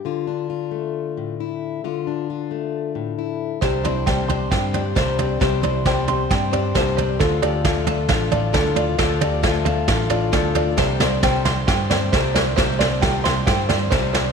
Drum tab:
SD |--------|--------|o-o-o-o-|o-o-o-o-|
FT |--------|--------|oooooooo|oooooooo|
BD |--------|--------|o-o-o-o-|o-o-o-o-|

SD |o-o-o-o-|o-o-o-o-|oooooooo|oooooooo|
FT |oooooooo|oooooooo|oooooooo|oooooooo|
BD |o-o-o-o-|o-o-o-o-|o-o-o-o-|o-o-o-o-|